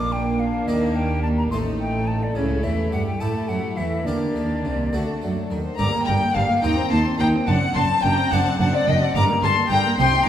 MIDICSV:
0, 0, Header, 1, 8, 480
1, 0, Start_track
1, 0, Key_signature, -2, "minor"
1, 0, Tempo, 558659
1, 582, Time_signature, 6, 3, 24, 8
1, 2505, Tempo, 571973
1, 5865, Tempo, 558140
1, 8761, End_track
2, 0, Start_track
2, 0, Title_t, "Violin section"
2, 0, Program_c, 0, 48
2, 0, Note_on_c, 0, 65, 62
2, 580, Note_off_c, 0, 65, 0
2, 585, Note_on_c, 0, 67, 59
2, 1288, Note_off_c, 0, 67, 0
2, 1308, Note_on_c, 0, 69, 54
2, 2024, Note_off_c, 0, 69, 0
2, 2034, Note_on_c, 0, 67, 58
2, 2717, Note_off_c, 0, 67, 0
2, 2752, Note_on_c, 0, 67, 54
2, 3456, Note_off_c, 0, 67, 0
2, 3469, Note_on_c, 0, 67, 51
2, 4182, Note_off_c, 0, 67, 0
2, 4193, Note_on_c, 0, 66, 54
2, 4418, Note_off_c, 0, 66, 0
2, 4435, Note_on_c, 0, 69, 58
2, 4502, Note_off_c, 0, 69, 0
2, 4674, Note_on_c, 0, 70, 62
2, 4723, Note_off_c, 0, 70, 0
2, 4791, Note_on_c, 0, 72, 58
2, 4911, Note_off_c, 0, 72, 0
2, 4915, Note_on_c, 0, 86, 108
2, 4982, Note_off_c, 0, 86, 0
2, 5141, Note_on_c, 0, 82, 106
2, 5208, Note_off_c, 0, 82, 0
2, 5384, Note_on_c, 0, 81, 98
2, 5451, Note_off_c, 0, 81, 0
2, 5620, Note_on_c, 0, 82, 100
2, 5856, Note_off_c, 0, 82, 0
2, 5859, Note_on_c, 0, 84, 99
2, 6093, Note_on_c, 0, 82, 105
2, 6104, Note_off_c, 0, 84, 0
2, 6162, Note_off_c, 0, 82, 0
2, 6341, Note_on_c, 0, 81, 99
2, 6410, Note_off_c, 0, 81, 0
2, 6574, Note_on_c, 0, 84, 107
2, 6643, Note_off_c, 0, 84, 0
2, 6820, Note_on_c, 0, 82, 107
2, 7060, Note_off_c, 0, 82, 0
2, 7068, Note_on_c, 0, 81, 108
2, 7297, Note_off_c, 0, 81, 0
2, 7307, Note_on_c, 0, 81, 98
2, 7356, Note_off_c, 0, 81, 0
2, 7427, Note_on_c, 0, 78, 99
2, 7545, Note_on_c, 0, 79, 114
2, 7547, Note_off_c, 0, 78, 0
2, 7668, Note_off_c, 0, 79, 0
2, 7669, Note_on_c, 0, 78, 100
2, 7780, Note_on_c, 0, 86, 119
2, 7787, Note_off_c, 0, 78, 0
2, 7848, Note_off_c, 0, 86, 0
2, 8013, Note_on_c, 0, 84, 119
2, 8255, Note_off_c, 0, 84, 0
2, 8257, Note_on_c, 0, 82, 117
2, 8496, Note_off_c, 0, 82, 0
2, 8496, Note_on_c, 0, 84, 125
2, 8735, Note_off_c, 0, 84, 0
2, 8761, End_track
3, 0, Start_track
3, 0, Title_t, "Flute"
3, 0, Program_c, 1, 73
3, 0, Note_on_c, 1, 86, 82
3, 104, Note_on_c, 1, 79, 83
3, 117, Note_off_c, 1, 86, 0
3, 340, Note_on_c, 1, 77, 67
3, 353, Note_off_c, 1, 79, 0
3, 581, Note_on_c, 1, 75, 74
3, 594, Note_off_c, 1, 77, 0
3, 821, Note_on_c, 1, 79, 80
3, 834, Note_off_c, 1, 75, 0
3, 1048, Note_off_c, 1, 79, 0
3, 1053, Note_on_c, 1, 81, 79
3, 1104, Note_off_c, 1, 81, 0
3, 1183, Note_on_c, 1, 82, 72
3, 1235, Note_off_c, 1, 82, 0
3, 1297, Note_on_c, 1, 84, 76
3, 1351, Note_off_c, 1, 84, 0
3, 1545, Note_on_c, 1, 79, 77
3, 1783, Note_on_c, 1, 81, 66
3, 1796, Note_off_c, 1, 79, 0
3, 1916, Note_on_c, 1, 74, 64
3, 1929, Note_off_c, 1, 81, 0
3, 2029, Note_on_c, 1, 73, 64
3, 2042, Note_off_c, 1, 74, 0
3, 2267, Note_on_c, 1, 76, 72
3, 2280, Note_off_c, 1, 73, 0
3, 2505, Note_off_c, 1, 76, 0
3, 2510, Note_on_c, 1, 78, 72
3, 2625, Note_off_c, 1, 78, 0
3, 2630, Note_on_c, 1, 79, 68
3, 2748, Note_on_c, 1, 81, 71
3, 2760, Note_off_c, 1, 79, 0
3, 2982, Note_on_c, 1, 78, 73
3, 2995, Note_off_c, 1, 81, 0
3, 3219, Note_on_c, 1, 76, 60
3, 3232, Note_off_c, 1, 78, 0
3, 3466, Note_on_c, 1, 74, 67
3, 3479, Note_off_c, 1, 76, 0
3, 4678, Note_off_c, 1, 74, 0
3, 4923, Note_on_c, 1, 82, 92
3, 5141, Note_off_c, 1, 82, 0
3, 5156, Note_on_c, 1, 79, 85
3, 5385, Note_on_c, 1, 77, 86
3, 5398, Note_off_c, 1, 79, 0
3, 5619, Note_off_c, 1, 77, 0
3, 5624, Note_on_c, 1, 79, 89
3, 5853, Note_off_c, 1, 79, 0
3, 5859, Note_on_c, 1, 81, 88
3, 6095, Note_off_c, 1, 81, 0
3, 6100, Note_on_c, 1, 79, 80
3, 6344, Note_on_c, 1, 78, 86
3, 6357, Note_off_c, 1, 79, 0
3, 6576, Note_off_c, 1, 78, 0
3, 6581, Note_on_c, 1, 81, 92
3, 6823, Note_on_c, 1, 79, 94
3, 6835, Note_off_c, 1, 81, 0
3, 7063, Note_off_c, 1, 79, 0
3, 7068, Note_on_c, 1, 78, 93
3, 7123, Note_off_c, 1, 78, 0
3, 7312, Note_on_c, 1, 78, 90
3, 7364, Note_off_c, 1, 78, 0
3, 7435, Note_on_c, 1, 74, 85
3, 7559, Note_on_c, 1, 75, 90
3, 7572, Note_off_c, 1, 74, 0
3, 7671, Note_on_c, 1, 74, 83
3, 7684, Note_off_c, 1, 75, 0
3, 7788, Note_on_c, 1, 82, 98
3, 7801, Note_off_c, 1, 74, 0
3, 8037, Note_on_c, 1, 81, 93
3, 8050, Note_off_c, 1, 82, 0
3, 8267, Note_off_c, 1, 81, 0
3, 8272, Note_on_c, 1, 79, 93
3, 8325, Note_off_c, 1, 79, 0
3, 8513, Note_on_c, 1, 79, 99
3, 8736, Note_off_c, 1, 79, 0
3, 8761, End_track
4, 0, Start_track
4, 0, Title_t, "Violin section"
4, 0, Program_c, 2, 48
4, 0, Note_on_c, 2, 62, 55
4, 1297, Note_off_c, 2, 62, 0
4, 1303, Note_on_c, 2, 63, 54
4, 2017, Note_on_c, 2, 64, 54
4, 2022, Note_off_c, 2, 63, 0
4, 2709, Note_off_c, 2, 64, 0
4, 2743, Note_on_c, 2, 64, 49
4, 3452, Note_off_c, 2, 64, 0
4, 3458, Note_on_c, 2, 62, 52
4, 4185, Note_off_c, 2, 62, 0
4, 4195, Note_on_c, 2, 62, 49
4, 4737, Note_off_c, 2, 62, 0
4, 4915, Note_on_c, 2, 82, 91
4, 5136, Note_off_c, 2, 82, 0
4, 5158, Note_on_c, 2, 79, 85
4, 5388, Note_off_c, 2, 79, 0
4, 5388, Note_on_c, 2, 77, 85
4, 5625, Note_on_c, 2, 79, 83
4, 5626, Note_off_c, 2, 77, 0
4, 5857, Note_on_c, 2, 81, 86
4, 5859, Note_off_c, 2, 79, 0
4, 5925, Note_off_c, 2, 81, 0
4, 6100, Note_on_c, 2, 79, 93
4, 6169, Note_off_c, 2, 79, 0
4, 6340, Note_on_c, 2, 78, 93
4, 6579, Note_off_c, 2, 78, 0
4, 6584, Note_on_c, 2, 81, 94
4, 6824, Note_on_c, 2, 79, 91
4, 6827, Note_off_c, 2, 81, 0
4, 7067, Note_off_c, 2, 79, 0
4, 7070, Note_on_c, 2, 78, 85
4, 7299, Note_off_c, 2, 78, 0
4, 7309, Note_on_c, 2, 78, 86
4, 7422, Note_on_c, 2, 74, 84
4, 7427, Note_off_c, 2, 78, 0
4, 7542, Note_on_c, 2, 75, 93
4, 7547, Note_off_c, 2, 74, 0
4, 7667, Note_off_c, 2, 75, 0
4, 7669, Note_on_c, 2, 74, 84
4, 7784, Note_on_c, 2, 82, 105
4, 7790, Note_off_c, 2, 74, 0
4, 7853, Note_off_c, 2, 82, 0
4, 8025, Note_on_c, 2, 81, 93
4, 8094, Note_off_c, 2, 81, 0
4, 8256, Note_on_c, 2, 79, 102
4, 8488, Note_off_c, 2, 79, 0
4, 8499, Note_on_c, 2, 79, 99
4, 8735, Note_on_c, 2, 82, 98
4, 8736, Note_off_c, 2, 79, 0
4, 8761, Note_off_c, 2, 82, 0
4, 8761, End_track
5, 0, Start_track
5, 0, Title_t, "Viola section"
5, 0, Program_c, 3, 48
5, 0, Note_on_c, 3, 58, 65
5, 1295, Note_on_c, 3, 57, 54
5, 1301, Note_off_c, 3, 58, 0
5, 2008, Note_off_c, 3, 57, 0
5, 2018, Note_on_c, 3, 57, 58
5, 2710, Note_off_c, 3, 57, 0
5, 2743, Note_on_c, 3, 57, 56
5, 3452, Note_off_c, 3, 57, 0
5, 3470, Note_on_c, 3, 58, 54
5, 4182, Note_off_c, 3, 58, 0
5, 4195, Note_on_c, 3, 57, 52
5, 4748, Note_off_c, 3, 57, 0
5, 4912, Note_on_c, 3, 55, 75
5, 5025, Note_off_c, 3, 55, 0
5, 5035, Note_on_c, 3, 58, 66
5, 5152, Note_on_c, 3, 55, 66
5, 5154, Note_off_c, 3, 58, 0
5, 5271, Note_on_c, 3, 58, 62
5, 5272, Note_off_c, 3, 55, 0
5, 5390, Note_off_c, 3, 58, 0
5, 5391, Note_on_c, 3, 55, 62
5, 5501, Note_off_c, 3, 55, 0
5, 5504, Note_on_c, 3, 58, 58
5, 5624, Note_on_c, 3, 63, 75
5, 5625, Note_off_c, 3, 58, 0
5, 5736, Note_off_c, 3, 63, 0
5, 5742, Note_on_c, 3, 60, 66
5, 5857, Note_on_c, 3, 63, 68
5, 5862, Note_off_c, 3, 60, 0
5, 5979, Note_on_c, 3, 60, 67
5, 5982, Note_off_c, 3, 63, 0
5, 6098, Note_on_c, 3, 63, 70
5, 6103, Note_off_c, 3, 60, 0
5, 6215, Note_off_c, 3, 63, 0
5, 6221, Note_on_c, 3, 60, 65
5, 6339, Note_on_c, 3, 62, 71
5, 6345, Note_off_c, 3, 60, 0
5, 6455, Note_off_c, 3, 62, 0
5, 6459, Note_on_c, 3, 60, 65
5, 6581, Note_on_c, 3, 62, 68
5, 6584, Note_off_c, 3, 60, 0
5, 6702, Note_on_c, 3, 60, 64
5, 6705, Note_off_c, 3, 62, 0
5, 6818, Note_on_c, 3, 62, 65
5, 6826, Note_off_c, 3, 60, 0
5, 6935, Note_off_c, 3, 62, 0
5, 6943, Note_on_c, 3, 60, 64
5, 7063, Note_on_c, 3, 62, 73
5, 7066, Note_off_c, 3, 60, 0
5, 7187, Note_off_c, 3, 62, 0
5, 7187, Note_on_c, 3, 60, 69
5, 7308, Note_on_c, 3, 62, 69
5, 7309, Note_off_c, 3, 60, 0
5, 7421, Note_off_c, 3, 62, 0
5, 7431, Note_on_c, 3, 60, 70
5, 7546, Note_on_c, 3, 62, 73
5, 7551, Note_off_c, 3, 60, 0
5, 7668, Note_off_c, 3, 62, 0
5, 7671, Note_on_c, 3, 60, 68
5, 7791, Note_off_c, 3, 60, 0
5, 7791, Note_on_c, 3, 55, 82
5, 7902, Note_off_c, 3, 55, 0
5, 7906, Note_on_c, 3, 58, 73
5, 8023, Note_on_c, 3, 55, 72
5, 8028, Note_off_c, 3, 58, 0
5, 8145, Note_off_c, 3, 55, 0
5, 8146, Note_on_c, 3, 58, 68
5, 8264, Note_on_c, 3, 55, 74
5, 8266, Note_off_c, 3, 58, 0
5, 8377, Note_off_c, 3, 55, 0
5, 8379, Note_on_c, 3, 58, 71
5, 8495, Note_on_c, 3, 60, 75
5, 8502, Note_off_c, 3, 58, 0
5, 8611, Note_off_c, 3, 60, 0
5, 8616, Note_on_c, 3, 63, 77
5, 8732, Note_on_c, 3, 60, 78
5, 8740, Note_off_c, 3, 63, 0
5, 8761, Note_off_c, 3, 60, 0
5, 8761, End_track
6, 0, Start_track
6, 0, Title_t, "Harpsichord"
6, 0, Program_c, 4, 6
6, 0, Note_on_c, 4, 46, 49
6, 0, Note_on_c, 4, 58, 38
6, 0, Note_on_c, 4, 62, 38
6, 0, Note_on_c, 4, 65, 41
6, 548, Note_off_c, 4, 58, 0
6, 549, Note_off_c, 4, 46, 0
6, 551, Note_off_c, 4, 62, 0
6, 553, Note_off_c, 4, 65, 0
6, 585, Note_on_c, 4, 51, 49
6, 587, Note_on_c, 4, 58, 39
6, 591, Note_on_c, 4, 62, 40
6, 593, Note_on_c, 4, 67, 41
6, 1268, Note_off_c, 4, 51, 0
6, 1269, Note_off_c, 4, 58, 0
6, 1271, Note_off_c, 4, 62, 0
6, 1272, Note_off_c, 4, 67, 0
6, 1307, Note_on_c, 4, 57, 40
6, 1308, Note_on_c, 4, 45, 48
6, 1313, Note_on_c, 4, 63, 38
6, 1316, Note_on_c, 4, 69, 38
6, 1989, Note_off_c, 4, 57, 0
6, 1990, Note_off_c, 4, 45, 0
6, 1992, Note_off_c, 4, 63, 0
6, 1994, Note_off_c, 4, 69, 0
6, 2022, Note_on_c, 4, 49, 48
6, 2239, Note_off_c, 4, 49, 0
6, 2262, Note_on_c, 4, 52, 44
6, 2481, Note_off_c, 4, 52, 0
6, 2512, Note_on_c, 4, 55, 50
6, 2724, Note_off_c, 4, 55, 0
6, 2748, Note_on_c, 4, 57, 45
6, 2750, Note_on_c, 4, 64, 38
6, 2755, Note_on_c, 4, 67, 39
6, 2989, Note_on_c, 4, 54, 43
6, 3203, Note_off_c, 4, 54, 0
6, 3226, Note_on_c, 4, 52, 44
6, 3268, Note_off_c, 4, 57, 0
6, 3269, Note_off_c, 4, 64, 0
6, 3272, Note_off_c, 4, 67, 0
6, 3444, Note_off_c, 4, 52, 0
6, 3473, Note_on_c, 4, 50, 44
6, 3476, Note_on_c, 4, 58, 36
6, 3478, Note_on_c, 4, 62, 35
6, 3482, Note_on_c, 4, 67, 36
6, 3689, Note_off_c, 4, 50, 0
6, 3717, Note_on_c, 4, 51, 43
6, 3932, Note_off_c, 4, 51, 0
6, 3960, Note_on_c, 4, 48, 44
6, 4166, Note_off_c, 4, 58, 0
6, 4167, Note_off_c, 4, 62, 0
6, 4169, Note_off_c, 4, 67, 0
6, 4175, Note_off_c, 4, 48, 0
6, 4195, Note_on_c, 4, 50, 44
6, 4197, Note_on_c, 4, 57, 32
6, 4202, Note_on_c, 4, 62, 36
6, 4207, Note_on_c, 4, 66, 35
6, 4412, Note_off_c, 4, 50, 0
6, 4437, Note_on_c, 4, 54, 45
6, 4645, Note_off_c, 4, 57, 0
6, 4654, Note_off_c, 4, 54, 0
6, 4678, Note_on_c, 4, 51, 43
6, 4887, Note_off_c, 4, 62, 0
6, 4890, Note_off_c, 4, 66, 0
6, 4893, Note_off_c, 4, 51, 0
6, 4909, Note_on_c, 4, 43, 68
6, 4911, Note_on_c, 4, 58, 51
6, 4916, Note_on_c, 4, 62, 51
6, 4921, Note_on_c, 4, 67, 50
6, 5126, Note_off_c, 4, 43, 0
6, 5154, Note_on_c, 4, 43, 67
6, 5367, Note_off_c, 4, 43, 0
6, 5387, Note_on_c, 4, 43, 67
6, 5591, Note_off_c, 4, 58, 0
6, 5593, Note_off_c, 4, 62, 0
6, 5596, Note_off_c, 4, 67, 0
6, 5602, Note_off_c, 4, 43, 0
6, 5621, Note_on_c, 4, 60, 53
6, 5624, Note_on_c, 4, 39, 66
6, 5625, Note_on_c, 4, 63, 51
6, 5631, Note_on_c, 4, 67, 51
6, 5839, Note_off_c, 4, 39, 0
6, 5856, Note_on_c, 4, 39, 66
6, 6078, Note_off_c, 4, 39, 0
6, 6093, Note_on_c, 4, 39, 68
6, 6310, Note_off_c, 4, 60, 0
6, 6313, Note_off_c, 4, 63, 0
6, 6316, Note_off_c, 4, 39, 0
6, 6316, Note_off_c, 4, 67, 0
6, 6344, Note_on_c, 4, 42, 69
6, 6562, Note_off_c, 4, 42, 0
6, 6584, Note_on_c, 4, 42, 66
6, 6802, Note_off_c, 4, 42, 0
6, 6824, Note_on_c, 4, 42, 71
6, 7043, Note_off_c, 4, 42, 0
6, 7071, Note_on_c, 4, 42, 73
6, 7071, Note_on_c, 4, 60, 54
6, 7072, Note_on_c, 4, 62, 57
6, 7077, Note_on_c, 4, 69, 62
6, 7287, Note_off_c, 4, 42, 0
6, 7311, Note_on_c, 4, 42, 69
6, 7527, Note_off_c, 4, 42, 0
6, 7550, Note_on_c, 4, 42, 75
6, 7589, Note_off_c, 4, 60, 0
6, 7591, Note_off_c, 4, 62, 0
6, 7594, Note_off_c, 4, 69, 0
6, 7767, Note_off_c, 4, 42, 0
6, 7790, Note_on_c, 4, 43, 77
6, 7791, Note_on_c, 4, 58, 56
6, 7793, Note_on_c, 4, 62, 59
6, 7799, Note_on_c, 4, 67, 59
6, 8006, Note_off_c, 4, 43, 0
6, 8035, Note_on_c, 4, 43, 72
6, 8247, Note_off_c, 4, 43, 0
6, 8263, Note_on_c, 4, 43, 72
6, 8472, Note_off_c, 4, 58, 0
6, 8473, Note_off_c, 4, 62, 0
6, 8476, Note_off_c, 4, 67, 0
6, 8480, Note_off_c, 4, 43, 0
6, 8507, Note_on_c, 4, 48, 73
6, 8513, Note_on_c, 4, 63, 59
6, 8517, Note_on_c, 4, 67, 59
6, 8722, Note_off_c, 4, 48, 0
6, 8761, Note_off_c, 4, 63, 0
6, 8761, Note_off_c, 4, 67, 0
6, 8761, End_track
7, 0, Start_track
7, 0, Title_t, "Cello section"
7, 0, Program_c, 5, 48
7, 0, Note_on_c, 5, 46, 63
7, 582, Note_off_c, 5, 46, 0
7, 583, Note_on_c, 5, 51, 60
7, 1287, Note_off_c, 5, 51, 0
7, 1299, Note_on_c, 5, 45, 57
7, 2005, Note_off_c, 5, 45, 0
7, 2022, Note_on_c, 5, 49, 61
7, 2246, Note_off_c, 5, 49, 0
7, 2269, Note_on_c, 5, 52, 60
7, 2505, Note_on_c, 5, 55, 55
7, 2509, Note_off_c, 5, 52, 0
7, 2739, Note_off_c, 5, 55, 0
7, 2742, Note_on_c, 5, 57, 56
7, 2978, Note_off_c, 5, 57, 0
7, 2990, Note_on_c, 5, 54, 54
7, 3057, Note_off_c, 5, 54, 0
7, 3229, Note_on_c, 5, 52, 53
7, 3464, Note_off_c, 5, 52, 0
7, 3473, Note_on_c, 5, 50, 53
7, 3713, Note_off_c, 5, 50, 0
7, 3714, Note_on_c, 5, 51, 54
7, 3951, Note_off_c, 5, 51, 0
7, 3960, Note_on_c, 5, 48, 52
7, 4197, Note_on_c, 5, 50, 51
7, 4198, Note_off_c, 5, 48, 0
7, 4264, Note_off_c, 5, 50, 0
7, 4440, Note_on_c, 5, 54, 49
7, 4675, Note_off_c, 5, 54, 0
7, 4682, Note_on_c, 5, 51, 52
7, 4749, Note_off_c, 5, 51, 0
7, 4921, Note_on_c, 5, 43, 81
7, 4988, Note_off_c, 5, 43, 0
7, 5159, Note_on_c, 5, 43, 81
7, 5226, Note_off_c, 5, 43, 0
7, 5396, Note_on_c, 5, 43, 77
7, 5463, Note_off_c, 5, 43, 0
7, 5633, Note_on_c, 5, 39, 81
7, 5700, Note_off_c, 5, 39, 0
7, 5865, Note_on_c, 5, 39, 76
7, 5934, Note_off_c, 5, 39, 0
7, 6107, Note_on_c, 5, 39, 82
7, 6176, Note_off_c, 5, 39, 0
7, 6342, Note_on_c, 5, 42, 82
7, 6410, Note_off_c, 5, 42, 0
7, 6590, Note_on_c, 5, 42, 80
7, 6659, Note_off_c, 5, 42, 0
7, 6829, Note_on_c, 5, 42, 78
7, 6898, Note_off_c, 5, 42, 0
7, 7063, Note_on_c, 5, 42, 87
7, 7132, Note_off_c, 5, 42, 0
7, 7304, Note_on_c, 5, 42, 82
7, 7373, Note_off_c, 5, 42, 0
7, 7548, Note_on_c, 5, 42, 85
7, 7617, Note_off_c, 5, 42, 0
7, 7791, Note_on_c, 5, 43, 90
7, 7859, Note_off_c, 5, 43, 0
7, 8029, Note_on_c, 5, 43, 87
7, 8098, Note_off_c, 5, 43, 0
7, 8259, Note_on_c, 5, 43, 86
7, 8328, Note_off_c, 5, 43, 0
7, 8503, Note_on_c, 5, 48, 86
7, 8572, Note_off_c, 5, 48, 0
7, 8761, End_track
8, 0, Start_track
8, 0, Title_t, "Double bass section"
8, 0, Program_c, 6, 48
8, 0, Note_on_c, 6, 34, 61
8, 581, Note_off_c, 6, 34, 0
8, 582, Note_on_c, 6, 39, 59
8, 1286, Note_off_c, 6, 39, 0
8, 1301, Note_on_c, 6, 33, 59
8, 2006, Note_off_c, 6, 33, 0
8, 2023, Note_on_c, 6, 37, 58
8, 2247, Note_off_c, 6, 37, 0
8, 2267, Note_on_c, 6, 40, 56
8, 2508, Note_off_c, 6, 40, 0
8, 2509, Note_on_c, 6, 43, 53
8, 2741, Note_off_c, 6, 43, 0
8, 2753, Note_on_c, 6, 45, 54
8, 2984, Note_off_c, 6, 45, 0
8, 2984, Note_on_c, 6, 42, 55
8, 3051, Note_off_c, 6, 42, 0
8, 3230, Note_on_c, 6, 40, 52
8, 3465, Note_off_c, 6, 40, 0
8, 3469, Note_on_c, 6, 38, 55
8, 3712, Note_off_c, 6, 38, 0
8, 3713, Note_on_c, 6, 39, 50
8, 3950, Note_off_c, 6, 39, 0
8, 3960, Note_on_c, 6, 36, 50
8, 4198, Note_off_c, 6, 36, 0
8, 4203, Note_on_c, 6, 38, 54
8, 4271, Note_off_c, 6, 38, 0
8, 4445, Note_on_c, 6, 42, 52
8, 4677, Note_off_c, 6, 42, 0
8, 4685, Note_on_c, 6, 39, 52
8, 4753, Note_off_c, 6, 39, 0
8, 4927, Note_on_c, 6, 31, 84
8, 4994, Note_off_c, 6, 31, 0
8, 5160, Note_on_c, 6, 31, 77
8, 5227, Note_off_c, 6, 31, 0
8, 5394, Note_on_c, 6, 31, 77
8, 5461, Note_off_c, 6, 31, 0
8, 5630, Note_on_c, 6, 39, 78
8, 5698, Note_off_c, 6, 39, 0
8, 5864, Note_on_c, 6, 39, 79
8, 5932, Note_off_c, 6, 39, 0
8, 6108, Note_on_c, 6, 39, 77
8, 6177, Note_off_c, 6, 39, 0
8, 6347, Note_on_c, 6, 30, 90
8, 6416, Note_off_c, 6, 30, 0
8, 6588, Note_on_c, 6, 30, 78
8, 6657, Note_off_c, 6, 30, 0
8, 6831, Note_on_c, 6, 30, 80
8, 6900, Note_off_c, 6, 30, 0
8, 7070, Note_on_c, 6, 30, 80
8, 7139, Note_off_c, 6, 30, 0
8, 7310, Note_on_c, 6, 30, 84
8, 7378, Note_off_c, 6, 30, 0
8, 7551, Note_on_c, 6, 30, 85
8, 7620, Note_off_c, 6, 30, 0
8, 7786, Note_on_c, 6, 31, 91
8, 7855, Note_off_c, 6, 31, 0
8, 8025, Note_on_c, 6, 31, 83
8, 8094, Note_off_c, 6, 31, 0
8, 8258, Note_on_c, 6, 31, 84
8, 8326, Note_off_c, 6, 31, 0
8, 8500, Note_on_c, 6, 36, 89
8, 8569, Note_off_c, 6, 36, 0
8, 8761, End_track
0, 0, End_of_file